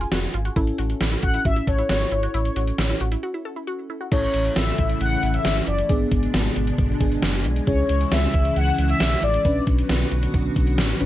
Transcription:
Already playing: C#4 F4 G#4
0.01 F4, closed hi-hat
0.12 F1 F#4, snare, closed hi-hat
0.23 closed hi-hat
0.34 G#1 F4, closed hi-hat
0.45 F#4, closed hi-hat
0.56 A1 C#4 E4 A4, kick, closed hi-hat
0.67 closed hi-hat
0.78 A1 F#4, closed hi-hat
0.90 closed hi-hat
1.01 A1 E4, snare, closed hi-hat
1.12 E4, closed hi-hat
1.23 A1 F#4 F#5, kick, closed hi-hat
1.34 E4, closed hi-hat
1.45 A1 F#4 E5, kick, closed hi-hat
1.56 E4, closed hi-hat
1.67 A1 A4 C#5, kick, closed hi-hat
1.79 E4, closed hi-hat
1.89 G#1 F#4 C#5, snare, closed hi-hat
2.01 closed hi-hat
2.12 G#1 E4 C#5, closed hi-hat
2.23 F#4, closed hi-hat
2.34 A1 E4, closed hi-hat
2.45 closed hi-hat
2.56 A1 F#4, closed hi-hat
2.67 closed hi-hat
2.78 A1 E4, snare, closed hi-hat
2.90 E4, closed hi-hat
3.01 A1 F#4, closed hi-hat
3.12 E4, closed hi-hat
3.23 F#4
3.34 E4
3.45 A4
3.56 E4
3.67 F#4
3.90 E4
4.01 F#4
4.12 A1 C#3 E3 A3 C#4 E4 A4 C#5, kick, closed hi-hat, crash
4.34 A1, closed hi-hat
4.45 closed hi-hat
4.56 A1 E5, snare, closed hi-hat
4.78 A1, kick, closed hi-hat
4.90 closed hi-hat
5.01 A1 F#5, closed hi-hat
5.23 A1, closed hi-hat
5.34 E5, closed hi-hat
5.45 G#1, snare, closed hi-hat
5.67 F#1 D5, closed hi-hat
5.78 closed hi-hat
5.89 G#1 B2 D3 G#3 B3 D4 G#4, kick, closed hi-hat
6.11 G#1, kick, closed hi-hat
6.23 closed hi-hat
6.34 G#1, snare, closed hi-hat
6.56 G#1, closed hi-hat
6.67 closed hi-hat
6.78 G#1, kick, closed hi-hat
7.01 G#1 B3 D4 G#4, kick, closed hi-hat
7.12 closed hi-hat
7.22 F#1, snare, closed hi-hat
7.45 B1, closed hi-hat
7.56 closed hi-hat
7.67 C#2 C#3 E3 C#4 E4 G#4 C#5, kick, closed hi-hat
7.89 C#2, closed hi-hat
8.01 closed hi-hat
8.12 C#2 E5, snare, closed hi-hat
8.34 C#2, kick, closed hi-hat
8.45 closed hi-hat
8.56 C#2 F#5, closed hi-hat
8.78 C#2, closed hi-hat
8.89 E5, closed hi-hat
9.00 B1, snare, closed hi-hat
9.23 A1 D5, closed hi-hat
9.34 closed hi-hat
9.45 B1 D3 F#3 B3 C#4 D4 F#4 B4, kick, closed hi-hat
9.67 B1, kick, closed hi-hat
9.78 closed hi-hat
9.89 B1, snare, closed hi-hat
10.12 B1, closed hi-hat
10.23 closed hi-hat
10.34 B1, kick, closed hi-hat
10.56 B1, kick, closed hi-hat
10.67 closed hi-hat
10.78 A1, snare, closed hi-hat
11.01 G#1 C#4 D4 B4, closed hi-hat

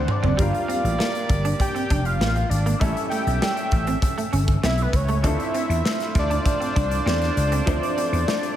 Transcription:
Already playing: F#3 A3 C4 D4 A4 C5
0.08 D5, muted clean electric guitar stroke, mid tom
0.23 F#1 C4, floor tom
0.37 G1 G3 A#3 D4 F4 G4 A#4 D5, kick, closed hi-hat
0.42 F5
0.53 muted clean electric guitar stroke, closed hi-hat
0.68 C4, closed hi-hat
0.84 A1, closed hi-hat
0.99 A#3, snare
1.15 closed hi-hat
1.29 G1, muted clean electric guitar stroke, kick, closed hi-hat
1.45 D4, closed hi-hat
1.60 G5, muted clean electric guitar stroke, kick, closed hi-hat
1.75 C4, closed hi-hat
1.90 F1 D4, kick, closed hi-hat
2.05 F5, closed hi-hat
2.20 A1 A#3, snare
2.36 muted clean electric guitar stroke, closed hi-hat
2.49 G#1 D5, closed hi-hat
2.66 A#3, closed hi-hat
2.79 A1 G3 A3 C#4 E4 A4 E5, kick, closed hi-hat
2.96 muted clean electric guitar stroke, closed hi-hat
3.10 A3 G5, closed hi-hat
3.27 B1, closed hi-hat
3.42 G3, snare
3.57 closed hi-hat
3.71 A1, muted clean electric guitar stroke, kick, closed hi-hat
3.87 C4, closed hi-hat
4.02 muted clean electric guitar stroke, kick, closed hi-hat
4.18 A3, closed hi-hat
4.33 G1 C#4, closed hi-hat
4.48 kick, closed hi-hat
4.63 B1 C4 E5, snare
4.78 closed hi-hat
4.82 B4
4.93 C#2 C#5, muted clean electric guitar stroke, kick, closed hi-hat
5.08 A3, closed hi-hat
5.23 D2 A3 C4 D4 F4 A4 C5, kick, closed hi-hat
5.27 E5
5.39 muted clean electric guitar stroke, closed hi-hat
5.54 C4, closed hi-hat
5.69 E2, closed hi-hat
5.85 A3, snare
6.00 snare, closed hi-hat
6.15 D2 D5, muted clean electric guitar stroke, kick, closed hi-hat
6.30 D4, closed hi-hat
6.45 muted clean electric guitar stroke, kick, closed hi-hat
6.60 C4, closed hi-hat
6.76 C2 D4, kick, closed hi-hat
6.91 closed hi-hat
7.06 E2 C4, snare
7.21 muted clean electric guitar stroke, snare, closed hi-hat
7.37 C#2, closed hi-hat
7.52 C4, closed hi-hat
7.66 D2 F3 A3 C4 D4 C5, kick, closed hi-hat
7.82 muted clean electric guitar stroke, closed hi-hat
7.98 C4, closed hi-hat
8.12 E2, closed hi-hat
8.28 A3, snare
8.43 closed hi-hat

